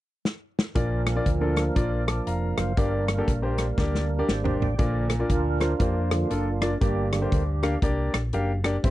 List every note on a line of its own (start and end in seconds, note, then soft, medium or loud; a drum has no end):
0.25 snare medium
0.59 snare medium
0.75 1.18 A#1 medium
0.75 1.53 A#2 medium
0.75 2.73 F3 medium
0.75 1.00 A#3 medium
0.75 2.73 A#3 medium
0.75 1.00 D4 medium
0.75 2.73 D4 medium
0.75 1.00 F4 medium
0.75 2.73 A#4 medium
0.75 1.00 D5 medium
0.75 kick loud
0.75 closed hi-hat medium
1.07 cross-stick loud
1.07 closed hi-hat medium
1.16 1.27 A#3 medium
1.16 1.27 D4 medium
1.16 1.27 F4 medium
1.16 1.27 D5 medium
1.26 1.69 D2 medium
1.26 kick medium
1.26 closed hi-hat medium
1.41 1.62 A#3 medium
1.41 1.62 D4 medium
1.41 1.63 F4 medium
1.41 1.63 A4 medium
1.57 cross-stick medium
1.57 closed hi-hat medium
1.75 2.19 A#1 medium
1.75 2.00 A#3 medium
1.75 2.01 D4 medium
1.75 2.01 F4 medium
1.75 2.01 D5 medium
1.75 kick loud
1.75 closed hi-hat medium
2.07 2.26 A5 soft
2.07 2.26 D6 medium
2.07 cross-stick loud
2.07 closed hi-hat medium
2.27 2.53 F1 medium
2.27 2.56 F5 medium
2.27 2.56 A#5 medium
2.27 closed hi-hat medium
2.57 2.74 F#1 medium
2.57 3.06 C5 soft
2.57 3.05 F5 medium
2.57 cross-stick loud
2.57 closed hi-hat medium
2.77 3.20 G1 loud
2.77 3.54 G2 medium
2.77 4.75 G3 medium
2.77 3.02 A#3 medium
2.77 4.75 A#3 medium
2.77 4.75 D4 medium
2.77 3.02 D4 medium
2.77 3.02 G4 medium
2.77 4.08 A#4 medium
2.77 3.02 D5 medium
2.77 kick loud
2.77 closed hi-hat medium
3.08 cross-stick loud
3.08 closed hi-hat medium
3.18 3.29 A#3 medium
3.18 3.29 D4 medium
3.18 3.29 G4 medium
3.18 3.29 A4 medium
3.28 3.70 A#1 medium
3.28 kick medium
3.28 closed hi-hat medium
3.42 3.64 A#3 medium
3.42 3.64 D4 medium
3.42 3.64 G4 medium
3.42 3.64 C5 medium
3.58 cross-stick medium
3.58 closed hi-hat medium
3.78 4.21 D2 medium
3.78 4.03 A#3 medium
3.78 4.03 D4 medium
3.78 4.03 G4 medium
3.78 4.03 D5 medium
3.78 kick medium
3.78 snare soft
3.95 snare soft
4.09 4.27 A#4 medium
4.19 4.29 A#3 medium
4.19 4.30 D4 medium
4.19 4.30 G4 medium
4.19 4.30 D5 medium
4.29 4.55 G#1 medium
4.29 4.58 C5 medium
4.29 4.57 D5 medium
4.29 snare medium
4.44 4.65 A#3 medium
4.44 4.65 D4 medium
4.44 4.65 G4 medium
4.44 4.65 C5 medium
4.44 floor tom medium
4.60 4.76 A1 medium
4.60 5.08 D5 medium
4.60 4.78 G5 medium
4.60 floor tom medium
4.78 5.22 A#1 medium
4.78 5.56 A#2 medium
4.78 5.16 D3 medium
4.78 5.16 F3 soft
4.78 5.03 A#3 medium
4.78 5.16 A#3 medium
4.78 5.03 D4 medium
4.78 5.04 F4 medium
4.78 5.04 D5 medium
4.78 kick loud
4.78 closed hi-hat medium
5.10 cross-stick loud
5.10 closed hi-hat medium
5.19 5.39 A#3 medium
5.19 5.39 D4 medium
5.19 5.39 F4 medium
5.19 5.39 D5 medium
5.30 5.73 D2 medium
5.30 5.81 D4 medium
5.30 6.11 F4 medium
5.30 5.82 A#4 medium
5.30 kick medium
5.30 closed hi-hat medium
5.60 5.71 A#3 medium
5.60 5.71 D4 medium
5.60 5.71 F4 medium
5.60 5.71 C5 medium
5.60 cross-stick medium
5.60 closed hi-hat medium
5.79 6.23 F2 medium
5.79 6.12 A#3 medium
5.79 6.11 A#3 medium
5.79 6.12 D4 medium
5.79 6.11 D4 medium
5.79 6.12 F4 medium
5.79 5.95 G4 medium
5.79 6.12 C5 medium
5.79 kick medium
5.79 closed hi-hat medium
6.11 6.29 D3 soft
6.11 6.29 F3 soft
6.11 6.78 A#3 medium
6.11 6.78 D4 medium
6.11 6.61 F4 medium
6.11 cross-stick loud
6.11 closed hi-hat medium
6.30 6.74 F#1 medium
6.30 6.47 A#3 medium
6.30 6.47 D4 medium
6.30 6.47 F4 medium
6.30 6.47 A4 medium
6.30 closed hi-hat medium
6.61 6.72 A#3 medium
6.61 6.72 D4 medium
6.61 6.72 F4 medium
6.61 6.71 F4 medium
6.61 6.72 D5 medium
6.61 cross-stick loud
6.61 closed hi-hat medium
6.81 7.24 G1 loud
6.81 7.59 G2 medium
6.81 7.06 A#3 medium
6.81 7.12 A#3 medium
6.81 7.06 D4 medium
6.81 7.79 D4 medium
6.81 7.06 G4 medium
6.81 7.79 G4 medium
6.81 7.06 D5 medium
6.81 kick loud
6.81 closed hi-hat medium
7.12 7.43 D3 soft
7.12 7.43 G3 soft
7.12 7.43 A#3 medium
7.12 cross-stick loud
7.12 closed hi-hat medium
7.22 7.41 A#3 medium
7.22 7.41 D4 medium
7.22 7.41 G4 medium
7.22 7.41 C5 medium
7.32 7.75 D2 medium
7.32 kick medium
7.32 closed hi-hat medium
7.63 7.73 A#3 medium
7.63 7.74 D4 medium
7.63 7.74 G4 medium
7.63 7.74 F5 medium
7.63 cross-stick medium
7.63 closed hi-hat medium
7.82 8.09 C2 medium
7.82 8.15 A#3 medium
7.82 8.15 D4 medium
7.82 8.15 G4 medium
7.82 8.15 D5 medium
7.82 kick loud
7.82 closed hi-hat medium
8.13 8.30 A#1 medium
8.13 cross-stick loud
8.13 closed hi-hat medium
8.33 8.76 F#1 medium
8.33 8.50 A#3 medium
8.33 8.50 D4 medium
8.33 8.50 G4 medium
8.33 8.50 F5 medium
8.33 closed hi-hat medium
8.64 8.75 A#3 medium
8.64 8.75 D4 medium
8.64 8.75 G4 medium
8.64 8.75 D5 medium
8.64 cross-stick loud
8.64 closed hi-hat medium
8.83 8.90 G1 loud
8.83 8.90 G2 medium
8.83 8.90 E3 soft
8.83 8.90 G3 soft
8.83 8.90 G3 medium
8.83 8.90 C4 medium
8.83 8.90 E4 medium
8.83 8.90 C5 medium
8.83 kick loud
8.83 closed hi-hat medium